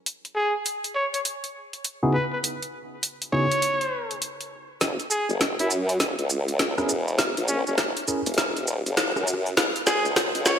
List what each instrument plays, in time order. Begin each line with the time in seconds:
0.06 closed hi-hat
0.25 closed hi-hat
0.36 trumpet G#4
0.66 closed hi-hat
0.84 closed hi-hat
0.95 trumpet C#5
1.14 trumpet C#5, closed hi-hat
1.25 closed hi-hat
1.44 closed hi-hat
1.73 closed hi-hat
1.84 closed hi-hat
2.03 tine electric piano C#3 B3 D#4 E4 F#4 G#4
2.13 trumpet B4
2.32 trumpet B4
2.44 closed hi-hat
2.62 closed hi-hat
3.03 closed hi-hat
3.22 closed hi-hat
3.32 tine electric piano C#3 B3 D#4 E4 F#4 G#4, trumpet C#5
3.51 closed hi-hat
3.62 closed hi-hat
3.81 closed hi-hat
4.11 closed hi-hat
4.22 closed hi-hat
4.41 closed hi-hat
4.81 wobble bass F#1, kick, snare, closed hi-hat, shaker
5.00 closed hi-hat, shaker
5.11 trumpet G#4, shaker
5.29 wobble bass F#1, shaker
5.41 kick, snare, closed hi-hat, shaker
5.59 wobble bass F#2, trumpet E4, closed hi-hat, shaker
5.70 shaker
5.89 closed hi-hat, shaker
6.00 wobble bass E1, kick, snare, closed hi-hat, shaker
6.19 wobble bass C#2, closed hi-hat, shaker
6.30 shaker
6.48 closed hi-hat, shaker
6.59 kick, snare, closed hi-hat, shaker
6.78 wobble bass E1, tine electric piano C#4 E4 G#4 A#4, cross-stick, shaker
6.89 shaker
7.08 shaker
7.19 kick, snare, closed hi-hat, shaker
7.37 wobble bass A#1, closed hi-hat, shaker
7.48 trumpet C#4, shaker
7.67 wobble bass F#1, trumpet C#4, shaker
7.78 kick, snare, closed hi-hat, shaker
7.97 closed hi-hat, shaker
8.08 tine electric piano C#4 E4 G#4 A#4, shaker
8.26 wobble bass E1, closed hi-hat, shaker
8.34 snare, closed hi-hat
8.38 kick, closed hi-hat, shaker
8.57 closed hi-hat, shaker
8.68 shaker
8.86 wobble bass F#1, closed hi-hat, shaker
8.97 kick, snare, closed hi-hat, shaker
9.16 wobble bass F#2, cross-stick, shaker
9.23 cross-stick, shaker
9.34 cross-stick
9.46 shaker
9.57 wobble bass C#2, kick, snare, closed hi-hat, shaker
9.76 closed hi-hat, shaker
9.86 trumpet G#4, snare, shaker
10.05 wobble bass C#2, shaker
10.16 kick, snare, closed hi-hat, shaker
10.35 wobble bass C#2, closed hi-hat, shaker
10.46 trumpet C#5, snare, shaker